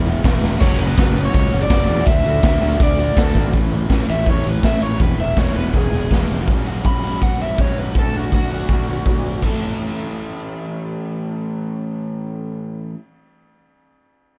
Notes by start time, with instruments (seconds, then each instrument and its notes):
Already playing: fingered electric bass E1
0.06 overdriven electric guitar E3 G#3 B3 E4, closed hi-hat
0.15 closed hi-hat
0.23 fingered electric bass E1, overdriven electric guitar E3 G#3 B3 E4, kick, snare, closed hi-hat
0.42 fingered electric bass E1, overdriven electric guitar B3 E4, snare, closed hi-hat
0.46 overdriven electric guitar G#3
0.54 snare
0.60 fingered electric bass F#1, overdriven electric guitar F#3 G#3 C#4 F#4 C#5, kick, crash
0.71 closed hi-hat
0.78 fingered electric bass F#1, overdriven electric guitar C#4 F#4 B4, closed hi-hat
0.83 overdriven electric guitar G#3
0.97 fingered electric bass F#1, overdriven electric guitar F#3 G#3 C#4 F#4, kick, snare, closed hi-hat
1.08 closed hi-hat
1.15 overdriven electric guitar F#3 G#3 C#4 F#4, closed hi-hat
1.25 overdriven electric guitar C#5, closed hi-hat
1.33 fingered electric bass C#2, overdriven electric guitar F#3 G#3 C#4 F#4, kick, closed hi-hat
1.52 fingered electric bass F#1, overdriven electric guitar F#3 G#3 C#4 F#4, closed hi-hat
1.61 overdriven electric guitar D5, closed hi-hat
1.69 fingered electric bass F#1, overdriven electric guitar F#3 G#3 C#4 F#4, kick, snare, closed hi-hat
1.79 closed hi-hat
1.87 fingered electric bass E2, overdriven electric guitar G#3 C#4 F#4, closed hi-hat
1.99 snare
2.06 fingered electric bass D2, overdriven electric guitar D3 A3 D4 F#4 E5, kick, closed hi-hat
2.16 closed hi-hat
2.24 fingered electric bass D2, overdriven electric guitar A3 D4 F#4, closed hi-hat
2.43 fingered electric bass D2, overdriven electric guitar D3 A3 D4, kick, snare, closed hi-hat
2.47 overdriven electric guitar F#4
2.62 fingered electric bass D2, overdriven electric guitar D3 A3 D4 F#4, closed hi-hat
2.72 closed hi-hat
2.80 fingered electric bass D2, overdriven electric guitar D3 A3 D4 F#4 D5, kick, closed hi-hat
2.98 overdriven electric guitar D3 A3 D4 F#4, closed hi-hat
3.08 closed hi-hat
3.17 fingered electric bass D2, overdriven electric guitar D3 A3 D4 F#4 A4, kick, snare, closed hi-hat
3.35 fingered electric bass G#1, overdriven electric guitar A3 D4 F#4, kick
3.53 fingered electric bass A1, overdriven electric guitar A2 E3 A3 C#4 E4, kick
3.71 fingered electric bass A1, overdriven electric guitar A3 C#4 E4, closed hi-hat
3.89 fingered electric bass A1, overdriven electric guitar E3 A3 C#4 E4, kick, snare
4.07 fingered electric bass A1, overdriven electric guitar C#4 E4 E5, closed hi-hat
4.11 overdriven electric guitar A3
4.26 fingered electric bass E2, overdriven electric guitar A2 E3 A3 C#4, kick
4.30 overdriven electric guitar E4 C#5
4.44 fingered electric bass A1, overdriven electric guitar A3 C#4 E4, closed hi-hat
4.49 overdriven electric guitar B4
4.63 fingered electric bass A1, overdriven electric guitar E3 A3 C#4 E4 E5, kick, snare
4.81 fingered electric bass A1, overdriven electric guitar C#5, closed hi-hat
5.00 fingered electric bass E1, overdriven electric guitar E3 G#3 B3 E4 B4, kick
5.19 fingered electric bass E1, overdriven electric guitar G#3 B3 E4 E5, closed hi-hat
5.37 fingered electric bass E1, overdriven electric guitar E3 G#3 B3 E4 C#5, kick, snare
5.55 fingered electric bass E1, overdriven electric guitar G#3 B3 E4 B4, closed hi-hat
5.74 fingered electric bass E1, overdriven electric guitar E3 G#3 B3 E4 G#4, kick
5.92 fingered electric bass E1, overdriven electric guitar G#3 B3 E4, closed hi-hat
6.10 fingered electric bass E1, overdriven electric guitar E3 G#3 B3 E4, kick, snare
6.30 fingered electric bass F1, closed hi-hat
6.48 overdriven electric guitar F#3 G#3 C#4 F#4, kick
6.65 overdriven electric guitar G#3 C#4 F#4, closed hi-hat
6.83 overdriven electric guitar F#3 G#3 C#4 F#4 B5, kick
7.02 overdriven electric guitar G#3 C#4 F#4, closed hi-hat
7.21 overdriven electric guitar F#3 G#3 C#4 F#5, kick
7.25 overdriven electric guitar F#4
7.39 overdriven electric guitar G#3 C#4 F#4 E5, closed hi-hat
7.57 overdriven electric guitar F#3 G#3 C#4 F#4 C#5, kick
7.77 overdriven electric guitar B4, closed hi-hat
7.95 overdriven electric guitar D3 A3 D4 F#4, kick
7.99 overdriven electric guitar A4
8.14 overdriven electric guitar A3 D4 F#4, closed hi-hat
8.31 overdriven electric guitar D3 A3 D4 F#4, kick
8.51 overdriven electric guitar A3 D4 F#4, closed hi-hat
8.69 overdriven electric guitar D3 A3 D4, kick
8.73 overdriven electric guitar F#4
8.87 overdriven electric guitar D4 F#4, closed hi-hat
8.92 overdriven electric guitar A3
9.05 overdriven electric guitar D3 A3 D4 F#4, kick
9.24 closed hi-hat
9.42 overdriven electric guitar A2 E3 A3 C#4 E4, kick, ride
9.46 overdriven electric guitar A4